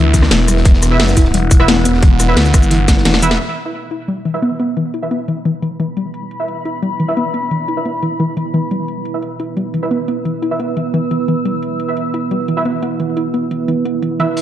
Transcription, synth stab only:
0.91 E4 B4 E5
1.60 E4 B4 E5
2.28 E4 B4 E5
3.23 E4 B4 E5
3.65 E4 B4 E5
4.34 E4 B4 E5
5.02 E4 B4 E5
6.40 E4 B4 E5
7.08 E4 B4 E5
7.77 E4 B4 E5
9.14 E4 B4 E5
9.83 E4 B4 E5
10.51 E4 B4 E5
11.88 E4 B4 E5
12.57 E4 B4 E5
14.20 E4 B4 E5

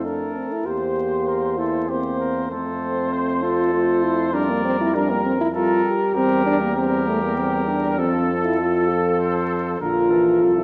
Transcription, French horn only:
0.05 D4
0.36 C4
0.52 E4
0.66 G4
1.58 E4
1.89 C4
2.51 C4
3.43 F4
3.74 F4
4.03 E4
4.34 D4
4.50 A#3
4.65 C4
4.81 E4
4.96 D4
5.12 A#3
5.26 C4
5.41 E4
5.56 F4
5.86 G4
6.16 C4
6.46 D4
6.61 A#3
6.76 C4
7.07 A3
7.23 A#3
7.38 C4
7.67 D4
7.99 C4
8.44 E4
8.60 F4
8.90 A4
9.81 F4
10.58 E4

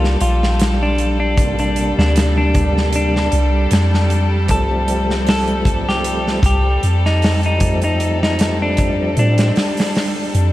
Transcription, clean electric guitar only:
Already playing: F4
0.21 F4
0.82 D4
1.20 D4
1.60 D4
1.99 D4
2.38 D4
2.96 D4
4.51 A4
5.29 A4
5.89 G4
6.46 G4
7.06 D#4
7.46 D#4
7.84 D#4
8.23 D#4
8.62 D4
9.19 D4

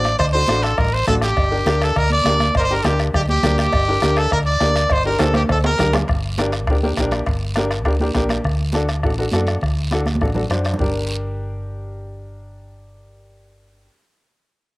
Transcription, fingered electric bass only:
Already playing: A1
0.19 D2
0.48 A1
0.78 A1
1.08 A1
1.37 G1
1.66 D2
1.96 D2
2.25 D2
2.55 G1
2.84 D2
3.15 D2
3.44 D2
3.73 G1
4.02 D2
4.32 D2
4.61 D2
4.90 G1
5.19 D2
5.49 D2
5.79 D2
6.09 G1
6.68 D2
6.97 A#1
7.27 G1
7.86 D2
8.15 A#1
8.44 D2
9.03 A1
9.32 F#2
9.62 D2
10.21 A1
10.50 F#2
10.80 G1

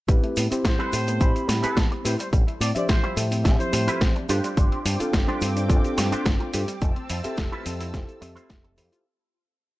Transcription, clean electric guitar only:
0.64 muted clean electric guitar stroke
0.79 C4 G4 A4 B4
1.07 muted clean electric guitar stroke
1.48 muted clean electric guitar stroke
1.63 C4 G4 A4 B4
1.91 muted clean electric guitar stroke
2.04 muted clean electric guitar stroke
2.88 muted clean electric guitar stroke
3.03 E4 F4 G4 C5
3.31 muted clean electric guitar stroke
3.73 muted clean electric guitar stroke
3.87 E4 F4 G4 B4
4.15 muted clean electric guitar stroke
4.29 D4 F4 G4 C5
5.13 muted clean electric guitar stroke
5.28 D4 F4 G4 C5
5.55 muted clean electric guitar stroke
5.97 muted clean electric guitar stroke
6.12 D4 F4 G4 C5
6.40 muted clean electric guitar stroke
6.54 muted clean electric guitar stroke
7.37 muted clean electric guitar stroke
7.52 E4 F4 A4 B4
7.80 muted clean electric guitar stroke
8.21 muted clean electric guitar stroke
8.35 E4 F4 A4 C5
8.64 muted clean electric guitar stroke
8.77 muted clean electric guitar stroke

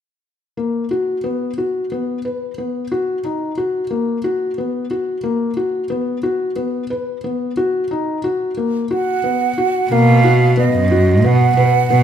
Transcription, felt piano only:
0.57 A#3
0.91 F#4
1.24 B3
1.58 F#4
1.92 B3
2.25 B4
2.58 B3
2.92 F#4
3.24 D#4
3.58 F#4
3.90 A#3
4.24 F#4
4.58 B3
4.91 F#4
5.23 A#3
5.57 F#4
5.90 B3
6.23 F#4
6.56 B3
6.90 B4
7.24 B3
7.57 F#4
7.91 D#4
8.24 F#4
8.57 A#3
8.91 F#4
9.24 B3
9.58 F#4
9.92 A#3
10.24 F#4
10.57 B3
10.91 F#4
11.24 B3
11.57 B4
11.90 B3

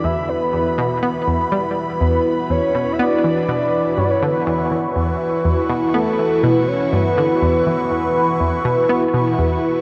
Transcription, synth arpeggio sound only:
0.04 E2
0.53 E2
0.78 B2
1.03 B3
1.27 E2
1.52 G3
2.01 E2
2.50 E2
2.75 B2
2.99 B3
3.24 E3
3.49 B2
3.98 G2
4.22 D3
4.47 E2
4.71 E3
4.96 E2
5.45 E2
5.70 B2
5.94 B3
6.19 E3
6.44 B2
6.93 G2
7.17 D3
7.42 E2
7.67 E3
7.91 E2
8.40 E2
8.65 B2
8.90 B3
9.14 B2
9.39 E2

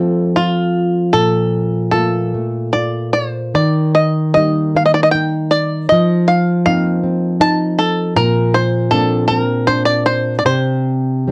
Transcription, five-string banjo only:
Already playing: A4
0.36 F4
1.13 A4
1.92 A4
2.73 D5
3.13 C5
3.55 D5
3.95 D#5
4.34 D#5
4.76 F5
4.85 D#5
4.94 D5
5.03 D#5
5.11 G5
5.51 D5
5.89 D#5
6.28 F5
6.66 F5
7.41 A5
7.78 A4
8.16 A#4
8.54 C5
8.91 A4
9.28 A4
9.39 A#4
9.67 C5
9.85 D5
10.06 C5
10.39 D5
10.46 C5

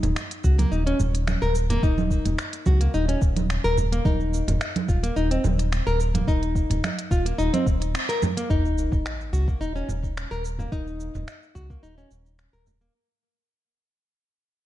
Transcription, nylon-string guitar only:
Already playing: D#4
0.44 F#4
0.58 A#3
0.72 D#4
0.87 C#4
1.42 A#4
1.70 A#3
1.83 D#4
2.66 F#4
2.81 A#3
2.94 D#4
3.09 C#4
3.64 A#4
3.92 A#3
4.05 D#4
4.89 F4
5.03 A#3
5.16 D#4
5.31 C4
5.87 A#4
6.15 A#3
6.28 D#4
7.11 F4
7.26 A#3
7.38 D#4
7.54 C4
8.09 A#4
8.37 A#3
8.50 D#4
9.33 F#4
9.48 A#3
9.61 D#4
9.76 C#4
10.31 A#4
10.59 A#3
10.72 D#4
11.55 F#4
11.70 A#3
11.83 D#4
11.98 C#4
12.53 A#4
12.81 A#3

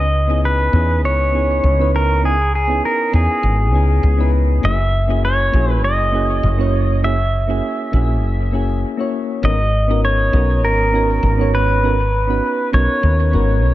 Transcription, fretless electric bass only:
Already playing: C#2
0.73 E2
1.03 C#2
1.63 C#2
3.13 E2
3.43 G#1
3.73 C#2
4.03 C#2
4.63 F#1
5.53 A#1
5.83 F#1
6.43 F#1
7.93 A#1
8.23 F#1
9.43 G#1
10.33 B1
10.63 G#1
11.23 G#1
12.73 B1
13.03 D#2
13.33 G#1
13.63 B1

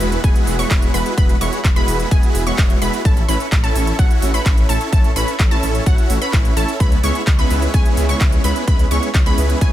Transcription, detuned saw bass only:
0.00 E1
0.24 E1
0.47 E1
0.71 E1
0.94 E1
1.18 E1
1.41 E1
1.64 E1
1.88 E1
2.11 E1
2.35 E1
2.58 E1
2.82 E1
3.05 A1
3.29 A1
3.52 A1
3.75 A1
3.99 A1
4.22 A1
4.46 A1
4.69 A1
4.93 A1
5.16 A1
5.40 A1
5.63 A1
5.86 A1
6.10 A1
6.33 A1
6.57 A1
6.80 C#2
7.04 C#2
7.27 C#2
7.50 C#2
7.74 C#2
7.97 C#2
8.21 C#2
8.44 C#2
8.68 C#2
8.91 C#2
9.14 C#2
9.38 C#2
9.61 C#2

